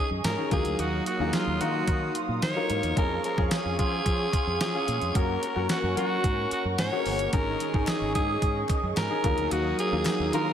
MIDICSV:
0, 0, Header, 1, 8, 480
1, 0, Start_track
1, 0, Key_signature, -6, "minor"
1, 0, Tempo, 545455
1, 692, Time_signature, 4, 2, 24, 8
1, 9266, End_track
2, 0, Start_track
2, 0, Title_t, "Analog synth pad"
2, 0, Program_c, 0, 89
2, 0, Note_on_c, 0, 68, 76
2, 0, Note_on_c, 0, 75, 77
2, 0, Note_on_c, 0, 85, 89
2, 437, Note_off_c, 0, 68, 0
2, 437, Note_off_c, 0, 75, 0
2, 439, Note_off_c, 0, 85, 0
2, 458, Note_on_c, 0, 77, 70
2, 459, Note_on_c, 0, 87, 85
2, 460, Note_on_c, 0, 54, 78
2, 2594, Note_off_c, 0, 54, 0
2, 2594, Note_off_c, 0, 87, 0
2, 2611, Note_on_c, 0, 68, 81
2, 2611, Note_on_c, 0, 85, 91
2, 4500, Note_off_c, 0, 77, 0
2, 4512, Note_off_c, 0, 68, 0
2, 4534, Note_on_c, 0, 78, 73
2, 4537, Note_on_c, 0, 70, 82
2, 6434, Note_off_c, 0, 78, 0
2, 6435, Note_off_c, 0, 70, 0
2, 6452, Note_on_c, 0, 75, 72
2, 6455, Note_on_c, 0, 68, 81
2, 8096, Note_off_c, 0, 85, 0
2, 8115, Note_off_c, 0, 75, 0
2, 8116, Note_off_c, 0, 68, 0
2, 8131, Note_on_c, 0, 54, 77
2, 8131, Note_on_c, 0, 87, 88
2, 8132, Note_on_c, 0, 77, 71
2, 9266, Note_off_c, 0, 54, 0
2, 9266, Note_off_c, 0, 77, 0
2, 9266, Note_off_c, 0, 87, 0
2, 9266, End_track
3, 0, Start_track
3, 0, Title_t, "Alto saxophone"
3, 0, Program_c, 1, 65
3, 0, Note_on_c, 1, 68, 94
3, 89, Note_off_c, 1, 68, 0
3, 219, Note_on_c, 1, 70, 104
3, 439, Note_off_c, 1, 70, 0
3, 462, Note_on_c, 1, 68, 91
3, 703, Note_on_c, 1, 66, 96
3, 716, Note_off_c, 1, 68, 0
3, 938, Note_off_c, 1, 66, 0
3, 944, Note_on_c, 1, 66, 88
3, 1183, Note_on_c, 1, 65, 95
3, 1196, Note_off_c, 1, 66, 0
3, 1423, Note_on_c, 1, 66, 92
3, 1436, Note_off_c, 1, 65, 0
3, 1900, Note_off_c, 1, 66, 0
3, 2140, Note_on_c, 1, 73, 124
3, 2583, Note_off_c, 1, 73, 0
3, 2627, Note_on_c, 1, 70, 105
3, 2843, Note_off_c, 1, 70, 0
3, 2867, Note_on_c, 1, 70, 98
3, 3045, Note_off_c, 1, 70, 0
3, 3045, Note_on_c, 1, 70, 71
3, 3105, Note_on_c, 1, 68, 103
3, 3118, Note_off_c, 1, 70, 0
3, 3338, Note_off_c, 1, 68, 0
3, 3343, Note_on_c, 1, 68, 110
3, 4022, Note_off_c, 1, 68, 0
3, 4066, Note_on_c, 1, 68, 106
3, 4546, Note_on_c, 1, 70, 104
3, 4559, Note_off_c, 1, 68, 0
3, 5019, Note_off_c, 1, 70, 0
3, 5022, Note_on_c, 1, 66, 91
3, 5241, Note_off_c, 1, 66, 0
3, 5266, Note_on_c, 1, 66, 103
3, 5706, Note_off_c, 1, 66, 0
3, 5745, Note_on_c, 1, 66, 85
3, 5850, Note_off_c, 1, 66, 0
3, 5982, Note_on_c, 1, 73, 103
3, 6423, Note_off_c, 1, 73, 0
3, 6456, Note_on_c, 1, 70, 100
3, 6939, Note_on_c, 1, 68, 94
3, 6952, Note_off_c, 1, 70, 0
3, 7169, Note_off_c, 1, 68, 0
3, 7174, Note_on_c, 1, 68, 89
3, 7622, Note_off_c, 1, 68, 0
3, 7903, Note_on_c, 1, 70, 100
3, 8380, Note_on_c, 1, 66, 99
3, 8394, Note_off_c, 1, 70, 0
3, 8616, Note_off_c, 1, 66, 0
3, 8623, Note_on_c, 1, 68, 104
3, 9064, Note_off_c, 1, 68, 0
3, 9104, Note_on_c, 1, 70, 113
3, 9266, Note_off_c, 1, 70, 0
3, 9266, End_track
4, 0, Start_track
4, 0, Title_t, "Grand piano"
4, 0, Program_c, 2, 0
4, 0, Control_c, 2, 64, 127
4, 0, Note_on_c, 2, 61, 75
4, 0, Note_on_c, 2, 63, 72
4, 0, Note_on_c, 2, 68, 80
4, 279, Note_off_c, 2, 61, 0
4, 282, Note_off_c, 2, 63, 0
4, 284, Note_off_c, 2, 68, 0
4, 329, Note_on_c, 2, 61, 72
4, 335, Note_on_c, 2, 63, 66
4, 340, Note_on_c, 2, 68, 80
4, 439, Note_off_c, 2, 63, 0
4, 447, Note_on_c, 2, 54, 86
4, 450, Note_on_c, 2, 58, 75
4, 451, Note_off_c, 2, 61, 0
4, 452, Note_on_c, 2, 63, 75
4, 455, Note_on_c, 2, 65, 76
4, 456, Note_off_c, 2, 68, 0
4, 458, Note_on_c, 2, 70, 88
4, 464, Control_c, 2, 64, 0
4, 630, Control_c, 2, 64, 127
4, 1013, Note_off_c, 2, 54, 0
4, 1014, Note_off_c, 2, 58, 0
4, 1015, Note_off_c, 2, 63, 0
4, 1016, Note_off_c, 2, 65, 0
4, 1018, Note_off_c, 2, 70, 0
4, 1049, Note_on_c, 2, 54, 78
4, 1052, Note_on_c, 2, 58, 71
4, 1054, Note_on_c, 2, 63, 74
4, 1057, Note_on_c, 2, 65, 69
4, 1060, Note_on_c, 2, 68, 69
4, 1113, Note_off_c, 2, 68, 0
4, 1117, Note_on_c, 2, 70, 89
4, 1388, Note_off_c, 2, 54, 0
4, 1389, Note_off_c, 2, 58, 0
4, 1391, Note_off_c, 2, 63, 0
4, 1392, Note_off_c, 2, 65, 0
4, 1406, Note_off_c, 2, 70, 0
4, 1408, Note_on_c, 2, 54, 74
4, 1412, Note_on_c, 2, 58, 69
4, 1414, Note_on_c, 2, 63, 69
4, 1416, Note_on_c, 2, 77, 70
4, 1419, Note_on_c, 2, 70, 82
4, 2198, Note_off_c, 2, 54, 0
4, 2200, Note_off_c, 2, 58, 0
4, 2201, Note_off_c, 2, 63, 0
4, 2202, Note_off_c, 2, 77, 0
4, 2204, Note_off_c, 2, 70, 0
4, 2247, Note_on_c, 2, 54, 78
4, 2251, Note_on_c, 2, 58, 69
4, 2254, Note_on_c, 2, 63, 73
4, 2256, Note_on_c, 2, 65, 73
4, 2259, Note_on_c, 2, 70, 86
4, 2587, Note_off_c, 2, 54, 0
4, 2589, Note_off_c, 2, 58, 0
4, 2591, Note_off_c, 2, 63, 0
4, 2592, Note_off_c, 2, 65, 0
4, 2593, Note_off_c, 2, 70, 0
4, 2608, Note_on_c, 2, 61, 82
4, 2614, Note_on_c, 2, 65, 69
4, 2619, Note_on_c, 2, 68, 88
4, 2623, Control_c, 2, 64, 0
4, 2775, Control_c, 2, 64, 127
4, 2948, Note_off_c, 2, 61, 0
4, 2950, Note_off_c, 2, 65, 0
4, 2953, Note_off_c, 2, 68, 0
4, 2969, Note_on_c, 2, 61, 76
4, 2974, Note_on_c, 2, 65, 75
4, 2980, Note_on_c, 2, 68, 86
4, 3308, Note_off_c, 2, 61, 0
4, 3311, Note_off_c, 2, 65, 0
4, 3313, Note_off_c, 2, 68, 0
4, 3327, Note_on_c, 2, 61, 75
4, 3331, Note_on_c, 2, 65, 66
4, 3336, Note_on_c, 2, 68, 83
4, 4118, Note_off_c, 2, 61, 0
4, 4120, Note_off_c, 2, 65, 0
4, 4122, Note_off_c, 2, 68, 0
4, 4167, Note_on_c, 2, 61, 78
4, 4172, Note_on_c, 2, 65, 73
4, 4178, Note_on_c, 2, 68, 87
4, 4507, Note_off_c, 2, 61, 0
4, 4510, Note_off_c, 2, 65, 0
4, 4513, Note_off_c, 2, 68, 0
4, 4528, Note_on_c, 2, 61, 83
4, 4535, Note_on_c, 2, 66, 69
4, 4539, Note_on_c, 2, 70, 84
4, 4545, Control_c, 2, 64, 0
4, 4683, Control_c, 2, 64, 127
4, 4868, Note_off_c, 2, 61, 0
4, 4871, Note_off_c, 2, 66, 0
4, 4873, Note_off_c, 2, 70, 0
4, 4887, Note_on_c, 2, 61, 77
4, 4892, Note_on_c, 2, 66, 72
4, 4897, Note_on_c, 2, 70, 86
4, 5227, Note_off_c, 2, 61, 0
4, 5230, Note_off_c, 2, 66, 0
4, 5232, Note_off_c, 2, 70, 0
4, 5244, Note_on_c, 2, 61, 74
4, 5250, Note_on_c, 2, 66, 72
4, 5255, Note_on_c, 2, 70, 82
4, 6036, Note_off_c, 2, 61, 0
4, 6039, Note_off_c, 2, 66, 0
4, 6042, Note_off_c, 2, 70, 0
4, 6087, Note_on_c, 2, 61, 78
4, 6092, Note_on_c, 2, 66, 72
4, 6097, Note_on_c, 2, 68, 66
4, 6152, Note_off_c, 2, 68, 0
4, 6155, Note_on_c, 2, 70, 82
4, 6427, Note_off_c, 2, 61, 0
4, 6430, Note_off_c, 2, 66, 0
4, 6446, Note_on_c, 2, 61, 78
4, 6450, Note_on_c, 2, 63, 68
4, 6457, Note_on_c, 2, 68, 85
4, 6461, Note_off_c, 2, 70, 0
4, 6463, Control_c, 2, 64, 0
4, 6628, Control_c, 2, 64, 127
4, 6787, Note_off_c, 2, 61, 0
4, 6789, Note_off_c, 2, 63, 0
4, 6792, Note_off_c, 2, 68, 0
4, 6806, Note_on_c, 2, 61, 77
4, 6812, Note_on_c, 2, 63, 71
4, 6817, Note_on_c, 2, 68, 83
4, 7147, Note_off_c, 2, 61, 0
4, 7150, Note_off_c, 2, 63, 0
4, 7152, Note_off_c, 2, 68, 0
4, 7166, Note_on_c, 2, 61, 74
4, 7171, Note_on_c, 2, 63, 69
4, 7178, Note_on_c, 2, 68, 82
4, 7957, Note_off_c, 2, 61, 0
4, 7960, Note_off_c, 2, 63, 0
4, 7963, Note_off_c, 2, 68, 0
4, 8005, Note_on_c, 2, 61, 75
4, 8010, Note_on_c, 2, 63, 72
4, 8016, Note_on_c, 2, 68, 88
4, 8122, Note_off_c, 2, 63, 0
4, 8129, Note_off_c, 2, 61, 0
4, 8129, Note_on_c, 2, 54, 79
4, 8133, Note_on_c, 2, 58, 72
4, 8134, Note_off_c, 2, 68, 0
4, 8135, Note_on_c, 2, 63, 74
4, 8137, Note_on_c, 2, 65, 76
4, 8140, Note_on_c, 2, 70, 91
4, 8144, Control_c, 2, 64, 0
4, 8326, Control_c, 2, 64, 127
4, 8694, Note_off_c, 2, 54, 0
4, 8695, Note_off_c, 2, 58, 0
4, 8696, Note_off_c, 2, 63, 0
4, 8697, Note_off_c, 2, 65, 0
4, 8699, Note_off_c, 2, 70, 0
4, 8727, Note_on_c, 2, 54, 75
4, 8730, Note_on_c, 2, 58, 69
4, 8734, Note_on_c, 2, 63, 72
4, 8736, Note_on_c, 2, 65, 70
4, 8738, Note_on_c, 2, 70, 83
4, 9067, Note_off_c, 2, 54, 0
4, 9069, Note_off_c, 2, 58, 0
4, 9071, Note_off_c, 2, 63, 0
4, 9072, Note_off_c, 2, 65, 0
4, 9072, Note_off_c, 2, 70, 0
4, 9086, Note_on_c, 2, 54, 73
4, 9088, Note_on_c, 2, 58, 66
4, 9090, Note_on_c, 2, 63, 69
4, 9093, Note_on_c, 2, 65, 68
4, 9096, Note_on_c, 2, 70, 84
4, 9266, Note_off_c, 2, 54, 0
4, 9266, Note_off_c, 2, 58, 0
4, 9266, Note_off_c, 2, 63, 0
4, 9266, Note_off_c, 2, 65, 0
4, 9266, Note_off_c, 2, 70, 0
4, 9266, End_track
5, 0, Start_track
5, 0, Title_t, "Clean electric guitar"
5, 0, Program_c, 3, 27
5, 0, Note_on_c, 3, 51, 86
5, 0, Note_on_c, 3, 56, 63
5, 0, Note_on_c, 3, 61, 67
5, 0, Note_on_c, 3, 68, 64
5, 205, Note_off_c, 3, 61, 0
5, 215, Note_on_c, 3, 61, 68
5, 449, Note_off_c, 3, 51, 0
5, 452, Note_on_c, 3, 54, 89
5, 501, Note_off_c, 3, 56, 0
5, 501, Note_off_c, 3, 61, 0
5, 501, Note_off_c, 3, 68, 0
5, 681, Note_off_c, 3, 54, 0
5, 692, Note_on_c, 3, 54, 90
5, 933, Note_on_c, 3, 58, 66
5, 1175, Note_on_c, 3, 63, 65
5, 1414, Note_on_c, 3, 65, 70
5, 1642, Note_off_c, 3, 63, 0
5, 1652, Note_on_c, 3, 63, 66
5, 1889, Note_off_c, 3, 65, 0
5, 1892, Note_on_c, 3, 65, 68
5, 2122, Note_off_c, 3, 63, 0
5, 2133, Note_on_c, 3, 63, 66
5, 2361, Note_off_c, 3, 58, 0
5, 2372, Note_on_c, 3, 58, 70
5, 2607, Note_off_c, 3, 54, 0
5, 2611, Note_on_c, 3, 53, 87
5, 2660, Note_off_c, 3, 58, 0
5, 2660, Note_off_c, 3, 63, 0
5, 2853, Note_on_c, 3, 56, 65
5, 3094, Note_on_c, 3, 61, 69
5, 3330, Note_off_c, 3, 65, 0
5, 3333, Note_on_c, 3, 65, 71
5, 3569, Note_off_c, 3, 61, 0
5, 3573, Note_on_c, 3, 61, 69
5, 3802, Note_off_c, 3, 65, 0
5, 3813, Note_on_c, 3, 65, 66
5, 4049, Note_off_c, 3, 61, 0
5, 4052, Note_on_c, 3, 61, 67
5, 4282, Note_off_c, 3, 56, 0
5, 4293, Note_on_c, 3, 56, 69
5, 4528, Note_off_c, 3, 56, 0
5, 4531, Note_off_c, 3, 53, 0
5, 4532, Note_on_c, 3, 58, 89
5, 4580, Note_off_c, 3, 65, 0
5, 4762, Note_off_c, 3, 58, 0
5, 4773, Note_on_c, 3, 58, 62
5, 5011, Note_off_c, 3, 61, 0
5, 5014, Note_on_c, 3, 61, 66
5, 5254, Note_on_c, 3, 66, 72
5, 5487, Note_off_c, 3, 61, 0
5, 5491, Note_on_c, 3, 61, 64
5, 5720, Note_off_c, 3, 66, 0
5, 5730, Note_on_c, 3, 66, 64
5, 5967, Note_off_c, 3, 61, 0
5, 5971, Note_on_c, 3, 61, 65
5, 6200, Note_off_c, 3, 58, 0
5, 6210, Note_on_c, 3, 58, 60
5, 6453, Note_on_c, 3, 51, 91
5, 6499, Note_off_c, 3, 58, 0
5, 6499, Note_off_c, 3, 61, 0
5, 6499, Note_off_c, 3, 66, 0
5, 6693, Note_on_c, 3, 56, 63
5, 6932, Note_on_c, 3, 61, 63
5, 7172, Note_on_c, 3, 68, 70
5, 7402, Note_off_c, 3, 61, 0
5, 7413, Note_on_c, 3, 61, 65
5, 7641, Note_off_c, 3, 68, 0
5, 7652, Note_on_c, 3, 68, 66
5, 7881, Note_off_c, 3, 61, 0
5, 7892, Note_on_c, 3, 61, 67
5, 8130, Note_off_c, 3, 51, 0
5, 8134, Note_on_c, 3, 54, 87
5, 8180, Note_off_c, 3, 56, 0
5, 8180, Note_off_c, 3, 61, 0
5, 8180, Note_off_c, 3, 68, 0
5, 8364, Note_off_c, 3, 54, 0
5, 8375, Note_on_c, 3, 54, 89
5, 8613, Note_on_c, 3, 58, 61
5, 8854, Note_on_c, 3, 63, 68
5, 9092, Note_on_c, 3, 65, 68
5, 9266, Note_off_c, 3, 54, 0
5, 9266, Note_off_c, 3, 58, 0
5, 9266, Note_off_c, 3, 63, 0
5, 9266, Note_off_c, 3, 65, 0
5, 9266, End_track
6, 0, Start_track
6, 0, Title_t, "Fretless electric bass"
6, 0, Program_c, 4, 35
6, 94, Note_on_c, 4, 42, 97
6, 183, Note_off_c, 4, 42, 0
6, 215, Note_on_c, 4, 44, 110
6, 304, Note_off_c, 4, 44, 0
6, 453, Note_on_c, 4, 39, 101
6, 543, Note_off_c, 4, 39, 0
6, 574, Note_on_c, 4, 38, 84
6, 663, Note_off_c, 4, 38, 0
6, 696, Note_on_c, 4, 39, 106
6, 874, Note_off_c, 4, 39, 0
6, 1053, Note_on_c, 4, 39, 105
6, 1142, Note_off_c, 4, 39, 0
6, 1295, Note_on_c, 4, 39, 114
6, 1384, Note_off_c, 4, 39, 0
6, 1413, Note_on_c, 4, 51, 98
6, 1593, Note_off_c, 4, 51, 0
6, 1651, Note_on_c, 4, 51, 111
6, 1831, Note_off_c, 4, 51, 0
6, 2012, Note_on_c, 4, 46, 96
6, 2102, Note_off_c, 4, 46, 0
6, 2134, Note_on_c, 4, 51, 100
6, 2223, Note_off_c, 4, 51, 0
6, 2375, Note_on_c, 4, 44, 96
6, 2464, Note_off_c, 4, 44, 0
6, 2495, Note_on_c, 4, 40, 92
6, 2584, Note_off_c, 4, 40, 0
6, 2614, Note_on_c, 4, 41, 113
6, 2793, Note_off_c, 4, 41, 0
6, 2974, Note_on_c, 4, 41, 94
6, 3063, Note_off_c, 4, 41, 0
6, 3215, Note_on_c, 4, 41, 96
6, 3304, Note_off_c, 4, 41, 0
6, 3336, Note_on_c, 4, 53, 104
6, 3514, Note_off_c, 4, 53, 0
6, 3572, Note_on_c, 4, 53, 108
6, 3752, Note_off_c, 4, 53, 0
6, 3935, Note_on_c, 4, 41, 92
6, 4024, Note_off_c, 4, 41, 0
6, 4054, Note_on_c, 4, 53, 98
6, 4143, Note_off_c, 4, 53, 0
6, 4296, Note_on_c, 4, 46, 97
6, 4384, Note_off_c, 4, 46, 0
6, 4414, Note_on_c, 4, 41, 96
6, 4503, Note_off_c, 4, 41, 0
6, 4534, Note_on_c, 4, 42, 107
6, 4713, Note_off_c, 4, 42, 0
6, 4893, Note_on_c, 4, 42, 99
6, 4983, Note_off_c, 4, 42, 0
6, 5133, Note_on_c, 4, 42, 99
6, 5223, Note_off_c, 4, 42, 0
6, 5252, Note_on_c, 4, 54, 92
6, 5432, Note_off_c, 4, 54, 0
6, 5491, Note_on_c, 4, 44, 97
6, 5671, Note_off_c, 4, 44, 0
6, 5853, Note_on_c, 4, 42, 89
6, 5942, Note_off_c, 4, 42, 0
6, 5973, Note_on_c, 4, 44, 88
6, 6063, Note_off_c, 4, 44, 0
6, 6211, Note_on_c, 4, 31, 85
6, 6392, Note_off_c, 4, 31, 0
6, 6451, Note_on_c, 4, 32, 107
6, 6631, Note_off_c, 4, 32, 0
6, 6812, Note_on_c, 4, 32, 100
6, 6902, Note_off_c, 4, 32, 0
6, 7052, Note_on_c, 4, 32, 107
6, 7176, Note_on_c, 4, 44, 96
6, 7189, Note_off_c, 4, 32, 0
6, 7354, Note_off_c, 4, 44, 0
6, 7410, Note_on_c, 4, 44, 96
6, 7591, Note_off_c, 4, 44, 0
6, 7773, Note_on_c, 4, 42, 94
6, 7863, Note_off_c, 4, 42, 0
6, 7894, Note_on_c, 4, 44, 109
6, 7983, Note_off_c, 4, 44, 0
6, 8132, Note_on_c, 4, 39, 102
6, 8222, Note_off_c, 4, 39, 0
6, 8252, Note_on_c, 4, 38, 85
6, 8342, Note_off_c, 4, 38, 0
6, 8373, Note_on_c, 4, 39, 106
6, 8552, Note_off_c, 4, 39, 0
6, 8733, Note_on_c, 4, 39, 103
6, 8822, Note_off_c, 4, 39, 0
6, 8973, Note_on_c, 4, 39, 109
6, 9063, Note_off_c, 4, 39, 0
6, 9093, Note_on_c, 4, 51, 98
6, 9266, Note_off_c, 4, 51, 0
6, 9266, End_track
7, 0, Start_track
7, 0, Title_t, "Muted fretless electric bass strokes"
7, 5734, Note_on_c, 9, 29, 50
7, 5822, Note_off_c, 9, 29, 0
7, 9266, End_track
8, 0, Start_track
8, 0, Title_t, "Drums"
8, 213, Note_on_c, 9, 54, 74
8, 216, Note_on_c, 9, 38, 116
8, 217, Note_on_c, 9, 42, 96
8, 301, Note_off_c, 9, 54, 0
8, 304, Note_off_c, 9, 38, 0
8, 305, Note_off_c, 9, 42, 0
8, 452, Note_on_c, 9, 42, 75
8, 454, Note_on_c, 9, 36, 109
8, 540, Note_off_c, 9, 42, 0
8, 542, Note_off_c, 9, 36, 0
8, 571, Note_on_c, 9, 42, 52
8, 659, Note_off_c, 9, 42, 0
8, 694, Note_on_c, 9, 42, 97
8, 782, Note_off_c, 9, 42, 0
8, 936, Note_on_c, 9, 42, 76
8, 1024, Note_off_c, 9, 42, 0
8, 1170, Note_on_c, 9, 42, 104
8, 1172, Note_on_c, 9, 54, 78
8, 1173, Note_on_c, 9, 38, 110
8, 1258, Note_off_c, 9, 42, 0
8, 1260, Note_off_c, 9, 54, 0
8, 1261, Note_off_c, 9, 38, 0
8, 1414, Note_on_c, 9, 42, 82
8, 1502, Note_off_c, 9, 42, 0
8, 1650, Note_on_c, 9, 42, 103
8, 1651, Note_on_c, 9, 36, 95
8, 1738, Note_off_c, 9, 42, 0
8, 1739, Note_off_c, 9, 36, 0
8, 1892, Note_on_c, 9, 42, 83
8, 1980, Note_off_c, 9, 42, 0
8, 2131, Note_on_c, 9, 54, 76
8, 2134, Note_on_c, 9, 38, 118
8, 2135, Note_on_c, 9, 42, 94
8, 2219, Note_off_c, 9, 54, 0
8, 2222, Note_off_c, 9, 38, 0
8, 2223, Note_off_c, 9, 42, 0
8, 2373, Note_on_c, 9, 42, 76
8, 2461, Note_off_c, 9, 42, 0
8, 2493, Note_on_c, 9, 42, 55
8, 2581, Note_off_c, 9, 42, 0
8, 2613, Note_on_c, 9, 36, 114
8, 2613, Note_on_c, 9, 42, 103
8, 2701, Note_off_c, 9, 36, 0
8, 2701, Note_off_c, 9, 42, 0
8, 2853, Note_on_c, 9, 42, 73
8, 2941, Note_off_c, 9, 42, 0
8, 2973, Note_on_c, 9, 36, 93
8, 3061, Note_off_c, 9, 36, 0
8, 3089, Note_on_c, 9, 42, 106
8, 3091, Note_on_c, 9, 54, 81
8, 3092, Note_on_c, 9, 38, 108
8, 3177, Note_off_c, 9, 42, 0
8, 3179, Note_off_c, 9, 54, 0
8, 3180, Note_off_c, 9, 38, 0
8, 3334, Note_on_c, 9, 42, 85
8, 3336, Note_on_c, 9, 36, 87
8, 3422, Note_off_c, 9, 42, 0
8, 3424, Note_off_c, 9, 36, 0
8, 3571, Note_on_c, 9, 36, 95
8, 3572, Note_on_c, 9, 42, 96
8, 3659, Note_off_c, 9, 36, 0
8, 3660, Note_off_c, 9, 42, 0
8, 3812, Note_on_c, 9, 36, 97
8, 3814, Note_on_c, 9, 42, 85
8, 3900, Note_off_c, 9, 36, 0
8, 3902, Note_off_c, 9, 42, 0
8, 4052, Note_on_c, 9, 54, 72
8, 4055, Note_on_c, 9, 38, 115
8, 4056, Note_on_c, 9, 42, 97
8, 4140, Note_off_c, 9, 54, 0
8, 4143, Note_off_c, 9, 38, 0
8, 4144, Note_off_c, 9, 42, 0
8, 4294, Note_on_c, 9, 42, 75
8, 4382, Note_off_c, 9, 42, 0
8, 4413, Note_on_c, 9, 42, 53
8, 4501, Note_off_c, 9, 42, 0
8, 4533, Note_on_c, 9, 36, 114
8, 4534, Note_on_c, 9, 42, 104
8, 4621, Note_off_c, 9, 36, 0
8, 4622, Note_off_c, 9, 42, 0
8, 4776, Note_on_c, 9, 42, 73
8, 4864, Note_off_c, 9, 42, 0
8, 5010, Note_on_c, 9, 42, 108
8, 5012, Note_on_c, 9, 54, 80
8, 5013, Note_on_c, 9, 38, 104
8, 5098, Note_off_c, 9, 42, 0
8, 5100, Note_off_c, 9, 54, 0
8, 5101, Note_off_c, 9, 38, 0
8, 5255, Note_on_c, 9, 42, 81
8, 5343, Note_off_c, 9, 42, 0
8, 5491, Note_on_c, 9, 36, 96
8, 5492, Note_on_c, 9, 42, 100
8, 5579, Note_off_c, 9, 36, 0
8, 5580, Note_off_c, 9, 42, 0
8, 5732, Note_on_c, 9, 42, 85
8, 5820, Note_off_c, 9, 42, 0
8, 5969, Note_on_c, 9, 54, 70
8, 5971, Note_on_c, 9, 38, 115
8, 5973, Note_on_c, 9, 42, 94
8, 6057, Note_off_c, 9, 54, 0
8, 6059, Note_off_c, 9, 38, 0
8, 6061, Note_off_c, 9, 42, 0
8, 6209, Note_on_c, 9, 46, 76
8, 6297, Note_off_c, 9, 46, 0
8, 6328, Note_on_c, 9, 42, 54
8, 6416, Note_off_c, 9, 42, 0
8, 6448, Note_on_c, 9, 42, 99
8, 6451, Note_on_c, 9, 36, 114
8, 6536, Note_off_c, 9, 42, 0
8, 6539, Note_off_c, 9, 36, 0
8, 6691, Note_on_c, 9, 42, 75
8, 6779, Note_off_c, 9, 42, 0
8, 6812, Note_on_c, 9, 36, 85
8, 6900, Note_off_c, 9, 36, 0
8, 6926, Note_on_c, 9, 39, 100
8, 6929, Note_on_c, 9, 42, 104
8, 6931, Note_on_c, 9, 38, 108
8, 6931, Note_on_c, 9, 54, 78
8, 7014, Note_off_c, 9, 39, 0
8, 7017, Note_off_c, 9, 42, 0
8, 7019, Note_off_c, 9, 38, 0
8, 7019, Note_off_c, 9, 54, 0
8, 7173, Note_on_c, 9, 42, 86
8, 7175, Note_on_c, 9, 36, 77
8, 7261, Note_off_c, 9, 42, 0
8, 7263, Note_off_c, 9, 36, 0
8, 7410, Note_on_c, 9, 36, 95
8, 7410, Note_on_c, 9, 42, 98
8, 7498, Note_off_c, 9, 36, 0
8, 7498, Note_off_c, 9, 42, 0
8, 7645, Note_on_c, 9, 39, 80
8, 7651, Note_on_c, 9, 36, 96
8, 7653, Note_on_c, 9, 42, 86
8, 7733, Note_off_c, 9, 39, 0
8, 7739, Note_off_c, 9, 36, 0
8, 7741, Note_off_c, 9, 42, 0
8, 7890, Note_on_c, 9, 54, 73
8, 7891, Note_on_c, 9, 39, 78
8, 7893, Note_on_c, 9, 38, 109
8, 7894, Note_on_c, 9, 42, 95
8, 7978, Note_off_c, 9, 54, 0
8, 7979, Note_off_c, 9, 39, 0
8, 7981, Note_off_c, 9, 38, 0
8, 7982, Note_off_c, 9, 42, 0
8, 8132, Note_on_c, 9, 36, 105
8, 8132, Note_on_c, 9, 42, 75
8, 8220, Note_off_c, 9, 36, 0
8, 8220, Note_off_c, 9, 42, 0
8, 8251, Note_on_c, 9, 42, 51
8, 8339, Note_off_c, 9, 42, 0
8, 8372, Note_on_c, 9, 42, 98
8, 8460, Note_off_c, 9, 42, 0
8, 8613, Note_on_c, 9, 42, 70
8, 8701, Note_off_c, 9, 42, 0
8, 8844, Note_on_c, 9, 39, 96
8, 8849, Note_on_c, 9, 42, 103
8, 8851, Note_on_c, 9, 38, 106
8, 8851, Note_on_c, 9, 54, 75
8, 8932, Note_off_c, 9, 39, 0
8, 8937, Note_off_c, 9, 42, 0
8, 8939, Note_off_c, 9, 38, 0
8, 8939, Note_off_c, 9, 54, 0
8, 9092, Note_on_c, 9, 42, 82
8, 9180, Note_off_c, 9, 42, 0
8, 9266, End_track
0, 0, End_of_file